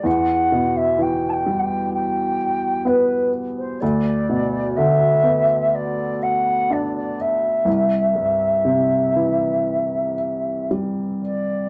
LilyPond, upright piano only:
\new Staff \with { instrumentName = "Upright piano" } { \clef bass \time 4/4 \key d \mixolydian \tempo 4 = 62 e,8 b,8 e8 g4. b4 | d,8 b,8 d8 b4. d'4 | c,8 g,8 c8 e4. g4 | }